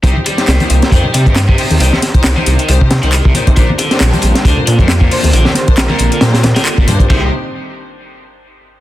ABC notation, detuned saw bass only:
X:1
M:4/4
L:1/16
Q:"Swing 16ths" 1/4=136
K:Cm
V:1 name="Detuned saw bass" clef=bass
C,, z3 C,, z C,, z F,, z C, G,,3 z E,, | C,, z2 C,, C,, z C,, z C,, C,2 C,,2 C,, z C, | B,,, z3 B,,, z B,,, z D,, z B,, F,,3 z D,, | B,,, z2 B,,, B,,, z B,,, z B,,3 z2 G,,, G,,2 |
C,,2 z12 z2 |]